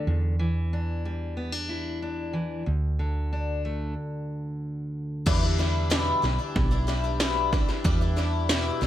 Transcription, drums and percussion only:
5.27 kick loud
5.27 snare soft
5.27 crash loud
5.59 snare soft
5.91 snare loud
6.24 snare soft
6.56 kick loud
6.56 snare soft
6.88 snare soft
7.20 snare loud
7.53 kick medium
7.53 snare soft
7.69 snare soft
7.84 kick loud
7.84 snare soft
8.17 snare soft
8.49 snare loud
8.82 snare soft

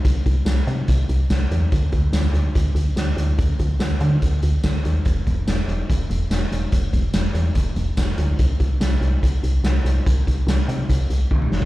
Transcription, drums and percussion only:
0.05 kick medium
0.05 closed hi-hat medium
0.26 kick medium
0.26 closed hi-hat soft
0.46 snare loud
0.46 closed hi-hat medium
0.46 tambourine loud
0.68 closed hi-hat soft
0.88 kick medium
0.88 closed hi-hat medium
1.09 closed hi-hat medium
1.30 kick medium
1.30 snare medium
1.30 closed hi-hat medium
1.30 tambourine medium
1.51 closed hi-hat medium
1.72 kick medium
1.72 closed hi-hat medium
1.92 kick medium
1.92 closed hi-hat soft
2.13 snare medium
2.13 closed hi-hat medium
2.13 tambourine loud
2.34 closed hi-hat soft
2.55 kick medium
2.55 closed hi-hat medium
2.76 closed hi-hat medium
2.97 snare medium
2.97 closed hi-hat medium
2.97 tambourine medium
3.18 closed hi-hat medium
3.39 kick loud
3.39 closed hi-hat medium
3.59 kick medium
3.59 closed hi-hat medium
3.80 snare loud
3.80 closed hi-hat medium
3.80 tambourine medium
4.00 closed hi-hat medium
4.22 kick medium
4.22 closed hi-hat medium
4.43 closed hi-hat medium
4.64 kick medium
4.64 snare medium
4.64 closed hi-hat medium
4.64 tambourine medium
4.85 closed hi-hat medium
5.05 kick medium
5.05 closed hi-hat medium
5.27 kick medium
5.27 closed hi-hat soft
5.48 snare loud
5.48 closed hi-hat medium
5.48 tambourine loud
5.69 closed hi-hat soft
5.90 kick medium
5.90 closed hi-hat medium
6.11 closed hi-hat medium
6.31 snare medium
6.31 closed hi-hat medium
6.31 tambourine medium
6.52 closed hi-hat medium
6.72 kick medium
6.72 closed hi-hat medium
6.93 kick medium
6.93 closed hi-hat soft
7.14 snare medium
7.14 closed hi-hat medium
7.14 tambourine loud
7.35 closed hi-hat medium
7.55 kick medium
7.55 closed hi-hat medium
7.76 closed hi-hat medium
7.97 kick medium
7.97 snare medium
7.97 closed hi-hat medium
7.97 tambourine loud
8.18 closed hi-hat medium
8.39 kick medium
8.39 closed hi-hat medium
8.60 kick medium
8.60 closed hi-hat soft
8.81 snare loud
8.81 closed hi-hat medium
8.81 tambourine loud
9.02 closed hi-hat soft
9.23 kick medium
9.23 closed hi-hat medium
9.44 closed hi-hat medium
9.65 snare loud
9.65 closed hi-hat medium
9.65 tambourine medium
9.86 closed hi-hat medium
10.06 kick medium
10.06 closed hi-hat medium
10.27 kick medium
10.27 closed hi-hat medium
10.48 snare loud
10.48 closed hi-hat medium
10.48 tambourine loud
10.69 closed hi-hat medium
10.89 kick medium
10.89 closed hi-hat medium
11.10 closed hi-hat medium
11.31 kick medium
11.31 high tom medium
11.42 mid tom medium
11.52 snare medium
11.62 kick medium

